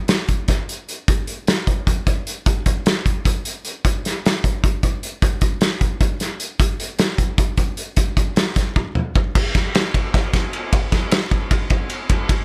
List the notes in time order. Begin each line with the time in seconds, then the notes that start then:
0.08 snare, closed hi-hat
0.28 kick, closed hi-hat
0.48 kick, snare, closed hi-hat
0.69 closed hi-hat
0.89 closed hi-hat
1.08 kick, closed hi-hat
1.27 closed hi-hat
1.47 snare, closed hi-hat
1.67 kick, closed hi-hat
1.87 kick, closed hi-hat
2.07 kick, closed hi-hat
2.27 closed hi-hat
2.46 kick, closed hi-hat
2.66 kick, closed hi-hat
2.86 snare, closed hi-hat
3.06 kick, closed hi-hat
3.25 kick, closed hi-hat
3.45 closed hi-hat
3.65 closed hi-hat
3.85 kick, closed hi-hat
4.05 snare, closed hi-hat
4.26 snare, closed hi-hat
4.44 kick, closed hi-hat
4.64 kick, closed hi-hat
4.83 kick, closed hi-hat
5.03 closed hi-hat
5.22 kick, closed hi-hat
5.41 kick, closed hi-hat
5.61 snare, closed hi-hat
5.81 kick, closed hi-hat
6.01 kick, closed hi-hat
6.20 snare, closed hi-hat
6.40 closed hi-hat
6.60 kick, closed hi-hat
6.80 closed hi-hat
6.99 snare, closed hi-hat
7.18 kick, closed hi-hat
7.38 kick, closed hi-hat
7.57 kick, closed hi-hat
7.77 closed hi-hat
7.96 kick, closed hi-hat
8.17 kick, closed hi-hat
8.36 snare, closed hi-hat
8.56 kick, snare, closed hi-hat
8.76 kick
8.95 mid tom
9.16 kick
9.35 kick, crash
9.55 kick, snare, ride
9.75 snare, ride
9.94 kick, ride
10.14 kick, snare, ride
10.33 kick, snare, ride
10.53 ride
10.73 kick, ride
10.92 kick, snare, ride
11.11 snare, ride
11.31 kick, ride
11.51 kick, ride
11.70 kick, ride
11.90 ride
12.09 kick, ride
12.29 kick, ride